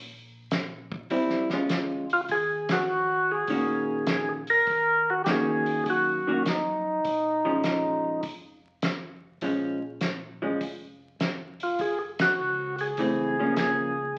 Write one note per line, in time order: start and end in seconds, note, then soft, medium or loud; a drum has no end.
0.00 1.07 A#1 medium
0.51 snare medium
0.51 closed hi-hat soft
0.92 kick soft
1.10 1.66 F1 medium
1.10 1.47 G3 soft
1.10 1.47 C4 medium
1.10 1.47 E4 soft
1.10 kick soft
1.10 open hi-hat soft
1.30 snare soft
1.50 2.03 G#3 soft
1.50 2.03 C#4 medium
1.50 2.03 F4 medium
1.50 snare soft
1.69 2.26 D2 medium
1.69 snare medium
1.69 closed hi-hat soft
2.10 2.21 F4 medium
2.10 open hi-hat soft
2.29 3.44 D#2 medium
2.29 2.72 G#4 medium
2.29 kick soft
2.29 open hi-hat soft
2.69 3.32 F#4 medium
2.69 snare medium
2.69 ride medium
3.31 4.10 G#4 medium
3.47 4.63 A#1 medium
3.47 4.40 D#3 soft
3.47 4.41 A#3 medium
3.47 4.41 C#4 soft
3.47 4.41 F#4 medium
3.47 kick soft
3.47 open hi-hat soft
4.07 snare medium
4.07 closed hi-hat medium
4.12 4.29 G#4 medium
4.47 5.10 A#4 medium
4.47 open hi-hat soft
4.67 5.82 D#2 medium
4.67 kick soft
4.67 open hi-hat soft
5.10 5.22 F#4 medium
5.24 6.18 D#3 medium
5.24 6.19 A#3 medium
5.24 5.27 G4 medium
5.24 snare medium
5.24 closed hi-hat soft
5.28 6.19 C#4 medium
5.28 6.19 F#4 medium
5.28 5.84 G#4 medium
5.66 open hi-hat soft
5.86 7.01 F#2 medium
5.86 6.43 F#4 medium
5.86 kick soft
5.86 open hi-hat soft
6.27 6.44 D#3 medium
6.27 6.44 A#3 medium
6.27 6.44 C#4 soft
6.27 6.45 F#4 medium
6.46 8.21 D#4 medium
6.46 snare medium
6.46 closed hi-hat soft
7.05 8.00 A#1 medium
7.05 kick soft
7.05 open hi-hat soft
7.45 8.20 F3 medium
7.45 8.20 G#3 medium
7.45 8.20 C#4 medium
7.64 snare medium
7.64 closed hi-hat soft
8.05 8.14 A#1 soft
8.23 9.38 F1 medium
8.23 kick soft
8.23 open hi-hat soft
8.82 snare medium
8.82 closed hi-hat soft
9.41 10.57 A#1 medium
9.41 9.78 F3 soft
9.41 9.79 G#3 soft
9.41 9.79 C#4 soft
9.41 kick soft
9.41 open hi-hat soft
10.01 snare medium
10.01 closed hi-hat soft
10.42 10.59 F3 medium
10.42 10.59 G#3 medium
10.42 10.60 C#4 medium
10.61 11.16 F1 medium
10.61 kick soft
10.61 open hi-hat soft
11.19 11.75 F1 medium
11.19 snare medium
11.19 closed hi-hat soft
11.60 11.81 F4 medium
11.60 open hi-hat soft
11.79 12.35 F#1 medium
11.79 11.99 G#4 medium
11.79 kick soft
11.79 open hi-hat soft
12.19 12.76 F#4 medium
12.19 snare medium
12.19 ride medium
12.39 12.94 C#2 medium
12.78 13.54 G#4 medium
12.78 open hi-hat soft
12.97 14.13 C#2 medium
12.97 13.35 E3 soft
12.97 13.35 A3 soft
12.97 13.35 C4 medium
12.97 kick soft
12.97 open hi-hat soft
13.39 13.90 F3 medium
13.39 13.91 A#3 medium
13.39 13.91 C#4 medium
13.56 14.18 G#4 medium
13.56 snare medium
13.56 closed hi-hat medium